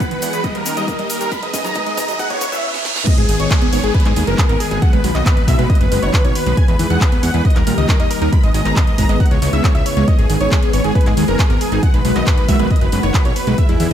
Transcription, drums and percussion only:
0.00 kick loud
0.00 closed hi-hat medium
0.00 shaker soft
0.11 closed hi-hat medium
0.22 open hi-hat loud
0.22 shaker loud
0.33 closed hi-hat medium
0.33 shaker medium
0.44 kick loud
0.44 closed hi-hat medium
0.44 shaker soft
0.55 closed hi-hat medium
0.66 open hi-hat loud
0.66 shaker loud
0.77 closed hi-hat medium
0.77 shaker medium
0.88 kick loud
0.88 closed hi-hat medium
0.88 shaker soft
0.99 closed hi-hat medium
1.10 open hi-hat loud
1.10 shaker loud
1.21 closed hi-hat medium
1.21 shaker medium
1.32 kick loud
1.32 closed hi-hat medium
1.32 shaker soft
1.43 closed hi-hat medium
1.54 kick loud
1.54 open hi-hat loud
1.54 shaker medium
1.65 closed hi-hat medium
1.65 shaker medium
1.74 kick loud
1.74 closed hi-hat medium
1.74 shaker soft
1.86 closed hi-hat medium
1.97 kick loud
1.97 open hi-hat loud
1.97 shaker medium
2.08 closed hi-hat medium
2.08 shaker medium
2.19 kick loud
2.19 closed hi-hat medium
2.19 shaker soft
2.30 kick medium
2.30 closed hi-hat medium
2.41 kick loud
2.41 open hi-hat loud
2.41 shaker medium
2.52 kick medium
2.52 closed hi-hat medium
2.52 shaker medium
2.74 snare medium
2.85 snare medium
2.96 snare medium
3.07 kick loud
3.07 closed hi-hat medium
3.07 crash loud
3.18 closed hi-hat medium
3.29 open hi-hat loud
3.40 closed hi-hat medium
3.51 kick loud
3.51 clap loud
3.51 closed hi-hat medium
3.62 closed hi-hat medium
3.73 open hi-hat loud
3.84 closed hi-hat medium
3.94 kick loud
3.94 closed hi-hat medium
4.00 closed hi-hat medium
4.05 clap soft
4.05 closed hi-hat medium
4.16 open hi-hat loud
4.27 closed hi-hat medium
4.38 kick loud
4.38 clap loud
4.38 closed hi-hat medium
4.49 closed hi-hat medium
4.60 open hi-hat loud
4.71 closed hi-hat medium
4.82 kick loud
4.82 closed hi-hat medium
4.93 closed hi-hat medium
5.04 open hi-hat loud
5.15 clap soft
5.15 closed hi-hat medium
5.26 kick loud
5.26 clap loud
5.26 closed hi-hat medium
5.37 closed hi-hat medium
5.48 kick medium
5.48 open hi-hat loud
5.59 closed hi-hat medium
5.70 kick loud
5.70 closed hi-hat soft
5.75 closed hi-hat medium
5.81 closed hi-hat medium
5.92 open hi-hat loud
6.03 closed hi-hat medium
6.13 kick loud
6.13 clap loud
6.13 closed hi-hat medium
6.25 closed hi-hat medium
6.35 open hi-hat loud
6.46 closed hi-hat medium
6.57 kick loud
6.57 closed hi-hat medium
6.68 closed hi-hat medium
6.79 open hi-hat loud
6.90 closed hi-hat medium
7.01 kick loud
7.01 clap loud
7.01 closed hi-hat medium
7.12 closed hi-hat medium
7.23 open hi-hat loud
7.34 closed hi-hat medium
7.45 kick loud
7.45 closed hi-hat soft
7.50 closed hi-hat medium
7.56 clap soft
7.56 closed hi-hat medium
7.67 open hi-hat loud
7.78 closed hi-hat medium
7.89 kick loud
7.89 clap loud
7.89 closed hi-hat medium
8.00 closed hi-hat medium
8.11 open hi-hat loud
8.22 closed hi-hat soft
8.32 kick loud
8.32 closed hi-hat medium
8.43 closed hi-hat soft
8.54 open hi-hat loud
8.65 clap soft
8.65 closed hi-hat medium
8.76 kick loud
8.76 clap loud
8.76 closed hi-hat medium
8.87 closed hi-hat medium
8.98 kick medium
8.98 open hi-hat loud
9.09 closed hi-hat medium
9.20 kick loud
9.20 closed hi-hat soft
9.26 closed hi-hat medium
9.31 closed hi-hat soft
9.42 open hi-hat loud
9.53 closed hi-hat medium
9.64 kick loud
9.64 clap loud
9.64 closed hi-hat medium
9.75 closed hi-hat medium
9.86 open hi-hat loud
9.97 closed hi-hat soft
10.08 kick loud
10.08 closed hi-hat medium
10.19 closed hi-hat medium
10.30 open hi-hat loud
10.41 closed hi-hat medium
10.52 kick loud
10.52 clap loud
10.52 closed hi-hat medium
10.63 closed hi-hat medium
10.73 open hi-hat loud
10.84 closed hi-hat medium
10.95 kick loud
10.95 closed hi-hat soft
11.01 closed hi-hat medium
11.06 clap soft
11.06 closed hi-hat soft
11.17 open hi-hat loud
11.28 closed hi-hat medium
11.39 kick loud
11.39 clap loud
11.39 closed hi-hat medium
11.50 closed hi-hat medium
11.61 open hi-hat loud
11.72 closed hi-hat medium
11.83 kick loud
11.83 closed hi-hat medium
11.94 closed hi-hat medium
12.05 open hi-hat loud
12.16 clap soft
12.16 closed hi-hat medium
12.27 kick loud
12.27 clap loud
12.27 closed hi-hat medium
12.38 closed hi-hat medium
12.48 kick medium
12.48 open hi-hat loud
12.59 closed hi-hat medium
12.70 kick loud
12.70 closed hi-hat soft
12.76 closed hi-hat medium
12.81 closed hi-hat medium
12.92 open hi-hat loud
13.03 closed hi-hat medium
13.14 kick loud
13.14 clap loud
13.14 closed hi-hat medium
13.25 closed hi-hat medium
13.36 open hi-hat loud
13.47 closed hi-hat medium
13.58 kick loud
13.58 closed hi-hat medium
13.69 closed hi-hat medium
13.80 open hi-hat loud

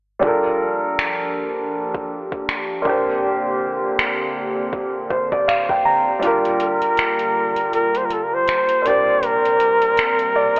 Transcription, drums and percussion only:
0.23 kick loud
0.99 finger snap loud
1.94 kick medium
2.32 kick medium
2.49 finger snap loud
2.85 kick loud
3.99 finger snap loud
4.73 kick medium
5.10 kick medium
5.32 kick medium
5.49 finger snap loud
5.69 kick medium
6.23 closed hi-hat medium
6.45 closed hi-hat soft
6.60 closed hi-hat medium
6.82 closed hi-hat soft
6.97 finger snap loud
6.97 closed hi-hat medium
7.19 closed hi-hat soft
7.56 closed hi-hat soft
7.73 closed hi-hat medium
7.95 closed hi-hat medium
8.10 closed hi-hat medium
8.48 finger snap loud
8.48 closed hi-hat medium
8.69 closed hi-hat medium
8.86 closed hi-hat medium
9.23 closed hi-hat medium
9.45 closed hi-hat soft
9.60 closed hi-hat medium
9.82 closed hi-hat soft
9.97 finger snap loud
9.97 closed hi-hat medium
10.19 closed hi-hat soft
10.56 closed hi-hat soft

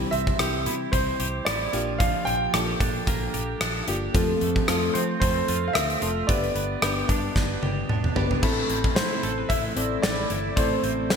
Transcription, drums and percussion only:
0.13 closed hi-hat medium
0.27 kick medium
0.39 cross-stick loud
0.39 closed hi-hat medium
0.66 closed hi-hat medium
0.93 kick medium
0.93 closed hi-hat medium
1.20 closed hi-hat medium
1.46 cross-stick loud
1.46 closed hi-hat medium
1.73 closed hi-hat medium
2.00 kick loud
2.00 closed hi-hat medium
2.27 closed hi-hat medium
2.54 cross-stick loud
2.54 closed hi-hat medium
2.80 kick medium
2.80 closed hi-hat medium
3.07 kick medium
3.07 closed hi-hat medium
3.34 closed hi-hat medium
3.61 cross-stick loud
3.61 closed hi-hat medium
3.88 closed hi-hat medium
4.15 kick loud
4.15 closed hi-hat medium
4.41 closed hi-hat medium
4.56 kick medium
4.68 cross-stick loud
4.68 closed hi-hat medium
4.95 closed hi-hat medium
5.22 kick medium
5.22 closed hi-hat medium
5.48 closed hi-hat medium
5.75 cross-stick loud
5.75 closed hi-hat medium
5.90 closed hi-hat soft
6.02 closed hi-hat medium
6.29 kick loud
6.29 closed hi-hat medium
6.44 closed hi-hat soft
6.56 closed hi-hat medium
6.82 cross-stick loud
6.82 closed hi-hat medium
7.09 kick medium
7.09 closed hi-hat medium
7.36 kick medium
7.36 snare soft
7.63 high tom medium
7.89 mid tom medium
8.04 mid tom medium
8.16 floor tom medium
8.31 floor tom medium
8.43 kick loud
8.43 crash medium
8.69 closed hi-hat medium
8.84 kick medium
8.96 snare loud
8.96 closed hi-hat medium
9.23 closed hi-hat medium
9.50 kick medium
9.50 closed hi-hat medium
9.77 closed hi-hat medium
10.03 snare loud
10.03 closed hi-hat medium
10.30 closed hi-hat medium
10.57 kick loud
10.57 closed hi-hat medium
10.84 closed hi-hat medium
11.10 snare loud
11.10 closed hi-hat medium

